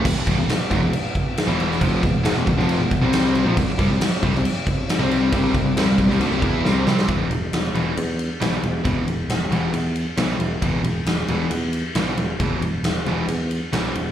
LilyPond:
<<
  \new Staff \with { instrumentName = "Glass harmonica" } { \time 4/4 \key e \minor \tempo 4 = 136 <e' b' fis''>1~ | <e' b' fis''>2~ <e' b' fis''>8. <c' g' d''>4 <e' b' fis''>16 | <c' g' d''>1~ | <c' g' d''>1 |
r1 | r1 | r1 | r1 | }
  \new Staff \with { instrumentName = "Distorted electric guitar" } { \clef bass \time 4/4 \key e \minor <e, b,>16 r16 <e, b,>16 <e, b,>16 r8 <f, c>16 <e, b,>16 r4 r16 <e, b, e>8. | <f, c f>8 <e, b,>8 <e, b,>16 <e, b,>16 <e, b,>16 <f, c f>8 <e, b,>8 <c g c'>4 <ais, f>16 | <c g>16 r16 <c g>16 <c g>16 r8 <c g>16 <c g>16 r4 r16 <c g c'>8. | <c g c'>8 <c g>8 <c g>16 <c g>16 <c g>16 <c g>16 <d a>16 <c g>16 <e b e'>8 <c g c'>8 <c g c'>8 |
<e, b, e>8 r4 <e, b, e>8 r4 <e, b, e>8 r8 | <e, b, e>8 r4 <e, b, e>8 r4 <e, b, e>8 r8 | <e, b, e>8 r4 <e, b, e>8 r4 <e, b, e>8 r8 | <e, b, e>8 r4 <e, b, e>8 r4 <e, b, e>8 r8 | }
  \new Staff \with { instrumentName = "Distorted electric guitar" } { \clef bass \time 4/4 \key e \minor <e, b,>16 r16 <e, b,>16 <e, b,>16 r8 <f, c>16 <e, b,>16 r4 r16 <e, b, e>8. | <f, c f>8 <e, b,>8 <e, b,>16 <e, b,>16 <e, b,>16 <f, c f>8 <e, b,>8 <c g c'>4 <ais, f>16 | <c g>16 r16 <c g>16 <c g>16 r8 <c g>16 <c g>16 r4 r16 <c g c'>8. | <c g c'>8 <c g>8 <c g>16 <c g>16 <c g>16 <c g>16 <d a>16 <c g>16 <e b e'>8 <c g c'>8 <c g c'>8 |
r1 | r1 | r1 | r1 | }
  \new Staff \with { instrumentName = "Overdriven electric guitar" } { \clef bass \time 4/4 \key e \minor <e, b,>16 r16 <e, b,>16 <e, b,>16 r8 <f, c>16 <e, b,>16 r4 r16 <e, b, e>8. | <f, c f>8 <e, b,>8 <e, b,>16 <e, b,>16 <e, b,>16 <f, c f>8 <e, b,>8 <c g c'>4 <ais, f>16 | <c g>16 r16 <c g>16 <c g>16 r8 <c g>16 <c g>16 r4 r16 <c g c'>8. | <c g c'>8 <c g>8 <c g>16 <c g>16 <c g>16 <c g>16 <d a>16 <c g>16 <e b e'>8 <c g c'>8 <c g c'>8 |
<e, b, e>8 r4 <e, b, e>8 r4 <e, b, e>8 r8 | <e, b, e>8 r4 <e, b, e>8 r4 <e, b, e>8 r8 | <e, b, e>8 r4 <e, b, e>8 r4 <e, b, e>8 r8 | <e, b, e>8 r4 <e, b, e>8 r4 <e, b, e>8 r8 | }
  \new Staff \with { instrumentName = "Picked electric bass" } { \clef bass \time 4/4 \key e \minor e,,16 r16 e,,16 e,,16 r8 f,,16 e,,16 r4 r16 e,,8. | f,,8 e,,8 e,,16 e,,16 e,,16 f,,8 e,,8 c,4 ais,,16 | c,16 r16 c,16 c,16 r8 c,16 c,16 r4 r16 c,8. | c,8 c,8 c,16 c,16 c,16 c,16 d,16 c,16 e,8 c,8 c,8 |
e,,8 e,,8 e,,8 e,,8 e,4 b,,8 e,,8 | e,,8 e,,8 e,,8 e,,8 e,4 b,,8 e,,8 | e,,8 e,,8 e,,8 e,,8 e,4 b,,8 e,,8 | e,,8 e,,8 e,,8 e,,8 e,4 b,,8 e,,8 | }
  \new DrumStaff \with { instrumentName = "Drums" } \drummode { \time 4/4 <cymc bd>8 <cymc bd>8 <cymc sn>8 <cymc bd>8 cymc8 <cymc bd>8 <cymc sn>8 cymc16 sn16 | <cymc bd>8 <cymc bd>8 <cymc sn>8 <cymc bd>16 sn16 cymc8 <cymc bd>8 <cymc sn>8 cymc8 | <cymc bd>8 <cymc bd>8 <cymc sn>8 <cymc bd>16 sn16 cymc8 <cymc bd>8 <cymc sn>8 cymc8 | <cymc bd>8 <cymc bd>8 <cymc sn>8 <cymc bd>16 sn16 cymc8 <cymc bd>8 sn8 sn16 sn16 |
<bd cymr>8 cymr8 <cymr sn>8 cymr8 cymr8 cymr8 <cymr sn>8 cymr8 | <bd cymr>8 cymr8 <cymr sn>8 cymr8 cymr8 cymr8 <cymr sn>8 cymr8 | <bd cymr>8 cymr8 <cymr sn>8 cymr8 cymr8 cymr8 <cymr sn>8 cymr8 | <bd cymr>8 cymr8 <cymr sn>8 cymr8 cymr8 cymr8 <cymr sn>8 cymr8 | }
>>